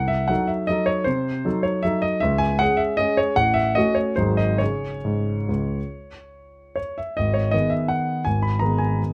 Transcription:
Already playing: C2
0.08 E5
0.28 F#3 D#4 A4 F#5
0.47 E5
0.67 F#3 D#4 A4 D#5
0.86 C#5
1.04 C3 C5
1.45 F#3 D#4 A4
1.63 C#5
1.83 F#3 D#4 A4 E5
2.02 D#5
2.20 C#2 E5
2.38 G#5
2.59 G#3 C#4 G#4 F#5
2.77 E5
2.97 G#3 C#4 G#4 D#5
3.17 C#5
3.36 A1 F#5
3.54 E5
3.75 A3 C#4 F#4 D#5
3.95 C#5
4.16 G#1 F#3 D#4 G#4 C5
4.37 D#5
4.58 C#3 C#4 G#4 C#5
5.05 G#2
5.49 C#2
6.76 C#5
6.98 E5
7.17 G#1 D#5
7.34 C#5
7.51 D#3 B3 G#4 D#5
7.70 E5
7.88 F#5
8.25 G#1 G#5
8.42 B5
8.59 D#3 B3 G#4 A#5
8.78 G#5

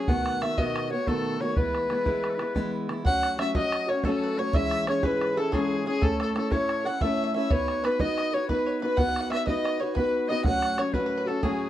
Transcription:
0.07 B2 D#3 A3 B3 F#4 F#5, bodhran
0.26 F#5, bodhran
0.41 D#3 A3 B3 F#4 E5, bodhran
0.58 B2 D#3 A3 B3 F#4 D#5, bodhran
0.76 bodhran
0.90 A3 B3 F#4 C#5
1.06 B2 D#3 A3 B3 F#4 A4, bodhran
1.40 D#3 A3 B3 F#4 C#5
1.56 E3 G#3 B3 E4 B4, bodhran
1.75 bodhran
1.89 E3 G#3 B3 E4 C#5, bodhran
1.94 B4
2.05 E3 G#3 B3 E4, bodhran
2.24 bodhran
2.30 A4
2.35 E4 B4
2.39 G#3 B3, bodhran
2.55 E3 G#3 B3 E4, bodhran
2.89 E3 G#3 B3 E4, bodhran
3.05 F#3 A3 C#4 F#4 F#5, bodhran
3.23 bodhran
3.38 F#3 A3 C#4 F#4 E5, bodhran
3.55 F#3 A3 C#4 F#4 D#5, bodhran
3.72 bodhran
3.88 A3 C#4 F#4 C#5
4.04 F#3 A3 C#4 F#4 A4, bodhran
4.24 B4
4.37 F#3 A3 C#4 F#4 C#5
4.53 G#2 E3 G#3 C#4 E4 G#4 E5, bodhran
4.71 bodhran
4.87 G#3 C#4 E4 G#4 C#5, bodhran
5.03 G#2 E3 G#3 C#4 E4 G#4 B4, bodhran
5.21 B4, bodhran
5.36 G#3 C#4 E4 G#4 A4
5.52 G#2 E3 G#3 C#4 E4 G#4, bodhran
5.85 G#3 C#4 E4 G#4
6.01 A2 A3 C#4 E4 A4, bodhran
6.20 A4, bodhran
6.35 A3 C#4 E4 A4, bodhran
6.52 A2 A3 C#4 E4 A4 C#5, bodhran
6.69 bodhran
6.85 C#4 E4 A4 F#5
7.01 A2 A3 C#4 E4 A4 E5, bodhran
7.14 E5
7.24 E5
7.34 A3 C#4 E4 A4 E5
7.50 B3 D#4 F#4 B4 C#5, bodhran
7.68 bodhran
7.84 B3 D#4 F#4 B4, bodhran
7.99 B3 D#4 F#4 B4 D#5, bodhran
8.18 D#5, bodhran
8.33 D#4 F#4 B4 C#5
8.49 B3 D#4 F#4 B4, bodhran
8.66 C#5
8.82 B3 D#4 F#4 B4
8.97 B3 D#4 F#4 B4 F#5, bodhran
9.09 F#5
9.16 bodhran
9.21 F#5
9.30 B3 D#4 F#4 B4 E5, bodhran
9.46 B3 D#4 F#4 B4 D#5, bodhran
9.64 D#5, bodhran
9.80 F#4 B4 C#5
9.84 D#4
9.95 B3 D#4 F#4 B4, bodhran
10.29 B3 D#4 F#4 B4 D#5
10.44 A2 F#3 A3 C#4 F#4 F#5, bodhran
10.62 bodhran
10.78 F#3 A3 C#4 F#4 C#5, bodhran
10.93 A2 F#3 A3 C#4 F#4 B4, bodhran
11.06 B4
11.17 B4
11.26 A3 C#4 F#4 A4
11.42 A2 F#3 A3 C#4 F#4 G#4, bodhran

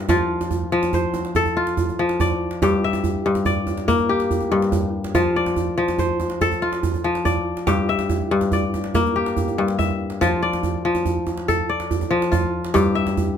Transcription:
Already playing: G2 A#3 G4 E5
0.09 F3 F4, djembe slap, djembe tone, djembe bass
0.41 djembe slap, djembe tone
0.51 djembe bass
0.72 F3, djembe slap
0.83 djembe slap, djembe tone
0.93 C5, djembe bass
1.14 djembe tone
1.25 djembe slap
1.35 A4, djembe bass
1.46 djembe tone
1.57 F4
1.67 djembe slap
1.77 djembe bass
1.89 djembe tone
1.99 F3
2.09 djembe slap
2.20 D5, djembe tone, djembe bass
2.51 djembe slap
2.62 G2 G4, djembe slap, djembe tone, djembe bass
2.84 E5
2.93 djembe slap, djembe tone
3.04 djembe bass
3.25 G2, djembe slap
3.35 djembe slap, djembe tone
3.45 D5, djembe bass
3.67 djembe tone
3.77 djembe slap
3.88 A#3, djembe bass
3.98 djembe tone
4.09 G4
4.20 djembe slap
4.31 djembe bass
4.41 djembe tone
4.52 G2
4.62 djembe slap
4.72 djembe tone, djembe bass
5.04 djembe slap
5.15 F3 F4, djembe slap, djembe tone, djembe bass
5.36 D5
5.46 djembe slap, djembe tone
5.56 djembe bass
5.78 F3, djembe slap
5.88 djembe slap, djembe tone
5.98 C5, djembe bass
6.20 djembe tone
6.30 djembe slap
6.41 A4, djembe bass
6.51 djembe tone
6.62 F4
6.72 djembe slap
6.83 djembe bass
6.94 djembe tone
7.04 F3
7.15 djembe slap
7.25 D5, djembe tone, djembe bass
7.57 djembe slap
7.67 G2 G4, djembe slap, djembe tone, djembe bass
7.89 E5
7.99 djembe slap, djembe tone
8.10 djembe bass
8.20 djembe slap
8.31 G2
8.41 djembe slap, djembe tone
8.52 D5, djembe bass
8.63 djembe slap
8.74 djembe tone
8.84 djembe slap
8.94 A#3, djembe bass
9.05 djembe tone
9.16 G4
9.26 djembe slap
9.37 djembe bass
9.48 djembe tone
9.58 G2
9.68 djembe slap
9.79 E5, djembe tone, djembe bass
9.89 djembe slap
10.00 djembe slap
10.10 djembe slap
10.21 F3 F4, djembe slap, djembe tone, djembe bass
10.42 D5
10.53 djembe slap, djembe tone
10.63 djembe bass
10.85 F3, djembe slap
10.95 djembe slap, djembe tone
11.06 djembe bass
11.27 djembe tone
11.38 djembe slap
11.48 A4, djembe bass
11.69 D5
11.80 djembe slap
11.91 djembe bass
12.01 djembe tone
12.11 F3
12.22 djembe slap
12.32 F4, djembe tone, djembe bass
12.65 djembe slap
12.74 G2 G4, djembe slap, djembe tone, djembe bass
12.95 E5
13.07 djembe slap, djembe tone
13.17 djembe bass

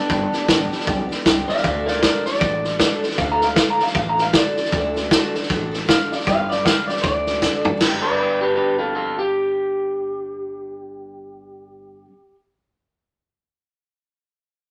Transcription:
Already playing: D4
0.08 G1 G2 D3 G3 B3 D4 G4, kick, snare
0.32 G3 B3 D4 G4, muted upright bass stroke, snare
0.48 A1 G2 D3 G3 B3 D4 G4, kick, snare, hi-hat pedal
0.70 G3 B3 D4 G4, muted upright bass stroke, snare
0.80 snare
0.85 B1 G3 B3 D4 G4, kick, snare
1.09 G3 B3 D4 G4, muted upright bass stroke, snare
1.25 C2 G2 D3 G3 B3 D4 G4, kick, snare, hi-hat pedal
1.48 G3 B3 D4 G4 D5 F5, muted upright bass stroke, snare
1.57 snare
1.64 D2 D3 A3 D4 F#4 A4 D5 F5, kick, snare
1.86 F#4 A4 A#4 D5, snare
1.90 D4
2.02 D3 A3 D4 F#4 A#4 D5, kick, snare, hi-hat pedal
2.06 A4
2.25 F#4 A4 D5, muted upright bass stroke, snare
2.29 D4
2.34 snare
2.41 A1 A3 D4 F#4, kick, snare
2.45 A4
2.64 D4 F#4 A4, snare
2.79 D3 A3 D4 F#4 A4, kick, snare, hi-hat pedal
3.03 D4 F#4 A4, muted upright bass stroke, snare
3.11 snare
3.18 D2 D3 A3 D4 F#4 A4 F5, kick, snare
3.32 A#5
3.41 F#4 A4 F5, snare
3.45 D4
3.56 D3 A3 D4 F#4 A4 F5, kick, snare, hi-hat pedal
3.70 A#5
3.79 D4 F#4 A4, muted upright bass stroke, snare
3.83 F5, snare
3.94 A1 A3 D4 F#4 A4 F5, kick, snare
4.09 A#5
4.17 D4 F#4 A4, snare
4.22 F5
4.33 D3 A3 D4 F#4 A4 D5, kick, snare, hi-hat pedal
4.55 D4 F#4 A4, muted upright bass stroke, snare
4.65 snare
4.71 D2 D3 A3 D4 F#4 A4, kick, snare
4.94 D4 F#4 A4, snare
5.10 D3 A3 D4 F#4 A4, kick, snare, hi-hat pedal
5.33 D4 F#4 A4, muted upright bass stroke, snare
5.43 snare
5.49 A1 A3 D4 F#4 A4, kick, snare
5.71 D4 F#4 A4, snare
5.87 D3 A3 D4 F#4 A4 F5, kick, snare, hi-hat pedal
6.11 D4 F#4 A4 D5, muted upright bass stroke, snare
6.20 snare
6.26 G1 G2 D3 G3 D4 G4 B4 F5, kick, snare
6.49 G3 D4 G4 B4 D5, snare
6.65 G2 D3 G3 D4 G4 B4 F5, kick, snare, hi-hat pedal
6.88 D4 G4 B4 D5, muted upright bass stroke, snare
6.92 G3
6.96 snare
7.03 D2 A3 D4 F#4 D5, kick, snare
7.07 A4
7.26 F#4 A4, snare
7.30 D4
7.42 D3 A3 D4 F#4 A4, kick, snare, hi-hat pedal
7.64 D4 F#4 A4, muted upright bass stroke, floor tom
7.77 G2 D3, snare, crash
7.82 G1 G3 B3
7.87 D4 G4
8.02 B4 D5
8.18 B4 D5
8.41 G4 B4
8.56 G4 B4
8.79 F4 A4
8.95 F4 A4
9.19 G4

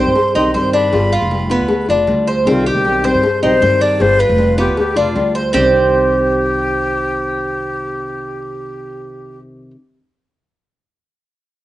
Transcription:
Already playing: C4 G4 C5 C6
0.00 D#3 G3
0.06 G2
0.15 muted nylon-string guitar stroke, cowbell
0.35 B1 D#3 G3 C4 D#4 G4 C6
0.54 G2 D#3 G3 C4 G4 C5 C6, cowbell
0.73 D4 B5, cowbell
0.92 G1 G3 B3 F4, cowbell
1.12 F4
1.22 F1
1.31 G3 B3 F4, cowbell
1.50 B3 F4, cowbell
1.60 D2
1.68 muted nylon-string guitar stroke, cowbell
1.88 F1 B3 D4 F4
2.07 D2 G3 B3 F4, cowbell
2.27 C5, cowbell
2.45 C2 C3 D#3 G3 C4 F4 G4, cowbell
2.66 G4
2.75 B1
2.85 D#3 G3 C4 G4, cowbell
3.03 D#3 G3 C4 G4 C5, cowbell
3.14 G2
3.23 muted nylon-string guitar stroke, cowbell
3.43 B1 D#3 G3 C4 D#4 G4 C5
3.61 G2 D#3 G3 C4 G4 C5, cowbell
3.81 D4 D5, cowbell
4.00 G1 G3 B3 F4 C5, cowbell
4.19 F4 B4
4.29 F1
4.38 G3 B3 F4, cowbell
4.58 B3 F4 G4, cowbell
4.68 D2
4.77 G4, muted nylon-string guitar stroke, cowbell
4.96 F1 B3 D4 F4
5.15 D2 G3 B3 F4, cowbell
5.35 C5, cowbell
5.53 C2 C3 D#3 G3 C4 G4 C5, low bongo
5.57 G4

